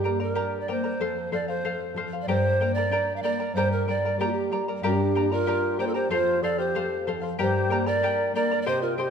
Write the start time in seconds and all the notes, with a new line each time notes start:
Already playing: G2 G4
0.04 A#3 A#4 D5 G5 A#5
0.20 A#4 D5 A#5
0.35 D4 G4 A#4 D5 G5 A#5
0.60 D5
0.68 A#3 A#4 C5 D5 G5 A#5
0.84 A#4 D5 A#5
1.00 F2 A4 C5 F5
1.32 F3 A4 C5 D5 F5
1.48 C5 F5
1.64 A3 A4 C5 F5
1.94 F3 A4 C5 F5
2.13 C5 F5
2.22 D5
2.27 G2 G4 A#4 C5 D5 G5 A#5
2.60 A#3 A#4 D5 G5 A#5
2.74 D5 A#5
2.78 A#4
2.90 D4 G4 A#4 D5 G5 A#5
3.16 F5
3.22 A#3 A#4 D5 G5 A#5
3.40 A#4 D5 A#5
3.54 G2 G4 A#4 C5 D5 G5
3.58 A#5
3.72 A#4
3.86 G3 A#4 D5 G5 A#5
4.05 A#4 D5 A#5
4.17 A#3 G4 A#4 D5 G5 A#5
4.27 F4
4.32 G4
4.50 G3 A#4 D5 G5 A#5
4.68 A#4 D5 A#5
4.81 G2 G4 A#4 D5 G5 A#5
4.86 D4 G4
5.14 A#3 A#4 D5 G5 A#5
5.31 F4 A#4 D5 A#5
5.46 D4 G4 A#4 D5 G5 A#5
5.79 A#3 G4 A#4 C5 D5 G5 A#5
5.85 F4 A4
5.94 G4 A#4 C5 D5 A#5
6.09 F2 F#4 A4 C5 F5
6.15 F4
6.42 F3 A4 C5 D5 F5
6.58 G4 C5 F5
6.75 A3 A4 C5 F5
7.07 F3 A4 C5 F5
7.22 C5 F5
7.38 G2 G4 A#4 C5 D5 G5 A#5
7.69 A#3 A#4 D5 G5 A#5
7.87 A#4 D5 A#5
8.01 D4 G4 A#4 D5 G5 A#5
8.33 A#3 A#4 D5 G5 A#5
8.51 A#4 D5 A#5
8.62 A#4 D5
8.66 C3 G4 C5 D#5 G5 C6
8.82 F4 A#4
8.97 D#4 G4 G#4 C5 D#5 G5 C6